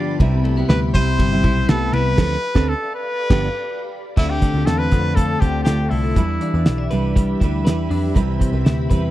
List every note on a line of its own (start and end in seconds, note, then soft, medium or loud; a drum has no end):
0.00 0.20 G2 medium
0.00 0.19 D3 medium
0.00 0.20 D3 medium
0.00 0.20 F3 medium
0.00 0.25 F3 medium
0.00 0.21 B3 medium
0.00 0.25 B3 medium
0.00 0.16 D4 medium
0.00 0.21 F4 medium
0.00 0.25 F4 medium
0.00 2.14 G4 medium
0.00 0.17 D5 medium
0.00 0.17 D5 loud
0.00 0.16 A5 medium
0.00 2.14 B5 medium
0.20 0.62 C2 medium
0.20 0.57 C3 medium
0.20 2.19 C3 medium
0.20 0.57 G3 medium
0.20 0.57 B3 medium
0.20 0.56 E4 medium
0.20 2.17 E5 medium
0.20 kick loud
0.20 ride medium
0.44 0.57 A3 medium
0.44 ride medium
0.57 0.94 G3 soft
0.57 0.94 B3 medium
0.57 0.95 B3 medium
0.57 0.95 E4 medium
0.68 0.91 D2 loud
0.68 1.18 G3 medium
0.68 0.82 B3 medium
0.68 0.80 B4 medium
0.68 snare loud
0.68 ride medium
0.93 1.16 C2 medium
0.93 1.32 C3 medium
0.93 1.32 G3 medium
0.93 1.65 C4 loud
0.93 1.31 E4 medium
0.93 1.70 C5 loud
0.93 kick medium
0.93 ride medium
1.19 1.40 G1 loud
1.19 2.19 G3 medium
1.19 kick medium
1.19 ride medium
1.32 1.67 C3 medium
1.32 1.68 G3 medium
1.32 1.69 E4 medium
1.43 1.65 B1 medium
1.43 1.92 E4 medium
1.43 kick loud
1.43 ride medium
1.68 1.90 C2 medium
1.68 2.18 C3 medium
1.68 2.17 G3 medium
1.68 1.94 A3 medium
1.68 2.18 B3 medium
1.68 2.18 E4 medium
1.68 1.94 A4 loud
1.68 snare loud
1.68 ride medium
1.93 2.14 C2 medium
1.93 2.19 B3 medium
1.93 2.18 E4 medium
1.93 2.70 B4 loud
1.93 ride medium
2.17 2.35 D2 medium
2.17 2.35 F3 loud
2.17 2.35 C4 loud
2.17 2.36 D4 loud
2.17 3.17 A4 medium
2.17 2.36 A4 loud
2.17 4.15 D5 medium
2.17 4.15 F5 medium
2.17 3.17 A5 medium
2.17 kick loud
2.17 snare loud
2.17 crash medium
2.55 2.73 D2 loud
2.55 2.73 C4 medium
2.55 2.72 D4 loud
2.55 2.72 A4 loud
2.55 kick loud
2.55 snare loud
2.69 2.93 A4 medium
2.94 3.89 B4 loud
3.17 4.16 G4 medium
3.17 4.16 B5 medium
3.30 3.47 G1 loud
3.30 3.48 G2 medium
3.30 3.48 D3 medium
3.30 3.48 F3 medium
3.30 3.48 B3 medium
3.30 3.47 D4 loud
3.30 3.47 G4 medium
3.30 kick loud
3.30 snare loud
3.30 crash medium
4.17 4.39 D2 loud
4.17 6.15 D3 medium
4.17 4.55 D3 medium
4.17 4.55 A3 medium
4.17 4.55 C4 medium
4.17 4.31 E4 loud
4.17 4.54 F4 medium
4.17 6.15 A4 medium
4.17 6.15 D5 medium
4.17 4.30 E5 medium
4.17 6.15 F5 medium
4.17 6.15 A5 medium
4.17 kick loud
4.17 crash medium
4.30 4.67 G4 medium
4.30 4.67 G5 medium
4.42 5.15 A3 medium
4.42 kick medium
4.42 closed hi-hat medium
4.54 4.65 D2 medium
4.54 4.91 A3 soft
4.54 4.92 C4 soft
4.54 4.92 F4 medium
4.66 4.88 E2 loud
4.66 5.40 C4 medium
4.66 4.79 A4 medium
4.66 4.80 A5 medium
4.66 snare loud
4.66 closed hi-hat medium
4.78 5.17 B4 loud
4.78 5.17 B5 medium
4.91 5.34 F2 medium
4.91 5.41 D3 medium
4.91 5.40 A3 medium
4.91 5.41 C4 medium
4.91 5.65 F4 medium
4.91 5.41 F4 medium
4.91 kick medium
4.91 closed hi-hat medium
5.15 5.90 A3 medium
5.15 5.41 A4 medium
5.15 5.41 A5 medium
5.15 kick medium
5.15 closed hi-hat medium
5.40 5.63 D2 medium
5.40 5.65 D3 medium
5.40 5.66 A3 medium
5.40 6.21 C4 medium
5.40 5.67 C4 medium
5.40 5.67 F4 medium
5.40 5.62 G4 medium
5.40 5.64 G5 medium
5.40 kick loud
5.40 closed hi-hat medium
5.63 5.88 D2 medium
5.63 6.16 D3 medium
5.63 6.16 A3 medium
5.63 6.21 F4 medium
5.63 5.91 G4 medium
5.63 5.89 G5 medium
5.63 snare loud
5.63 closed hi-hat loud
5.68 6.17 C4 medium
5.68 6.17 F4 medium
5.89 6.13 C2 medium
5.89 6.21 A3 medium
5.89 6.90 E4 medium
5.89 6.91 E5 medium
5.89 open hi-hat medium
6.16 6.38 E2 medium
6.16 9.11 E3 medium
6.16 6.54 E3 medium
6.16 6.54 G3 medium
6.16 6.54 D4 medium
6.16 6.54 E4 medium
6.16 9.11 G4 medium
6.16 6.53 B4 medium
6.16 8.14 D5 medium
6.16 9.11 E5 medium
6.16 9.11 B5 medium
6.16 kick loud
6.16 closed hi-hat medium
6.41 6.65 D4 medium
6.41 closed hi-hat medium
6.54 6.64 E2 loud
6.54 6.91 D4 medium
6.54 6.92 E4 medium
6.54 6.91 B4 medium
6.66 6.88 B1 medium
6.66 6.78 D4 medium
6.66 snare loud
6.66 closed hi-hat medium
6.78 7.39 E4 soft
6.91 7.34 C2 medium
6.91 7.42 G3 medium
6.91 7.42 D4 medium
6.91 7.43 E4 medium
6.91 7.64 B4 medium
6.91 7.43 B4 medium
6.91 closed hi-hat medium
7.15 8.20 G3 medium
7.15 kick loud
7.15 closed hi-hat loud
7.40 7.62 D2 medium
7.40 7.66 G3 medium
7.40 7.66 D4 medium
7.40 8.65 E4 medium
7.40 7.67 E4 medium
7.40 7.67 B4 medium
7.40 kick medium
7.40 closed hi-hat medium
7.65 7.87 E2 medium
7.65 8.16 G3 medium
7.65 8.16 D4 medium
7.65 8.16 E4 medium
7.65 8.20 B4 medium
7.65 8.16 B4 medium
7.65 snare loud
7.65 closed hi-hat loud
7.90 8.12 F2 medium
7.90 8.20 D4 medium
7.90 open hi-hat medium
8.14 8.37 C2 loud
8.14 9.11 C3 medium
8.14 8.53 C3 medium
8.14 8.53 E3 medium
8.14 8.53 G3 medium
8.14 9.11 C4 medium
8.14 8.53 C4 medium
8.14 8.52 E4 medium
8.14 8.52 B4 loud
8.14 kick loud
8.14 closed hi-hat medium
8.40 9.11 C4 medium
8.40 kick medium
8.40 closed hi-hat medium
8.53 8.63 C2 medium
8.53 8.89 G3 medium
8.53 8.90 C4 soft
8.53 8.90 E4 medium
8.53 8.90 B4 medium
8.65 8.87 D2 medium
8.65 9.11 E4 medium
8.65 snare loud
8.65 closed hi-hat medium
8.90 9.11 E2 medium
8.90 9.11 G3 medium
8.90 9.11 C4 medium
8.90 9.11 E4 medium
8.90 9.11 B4 medium
8.90 kick medium
8.90 closed hi-hat medium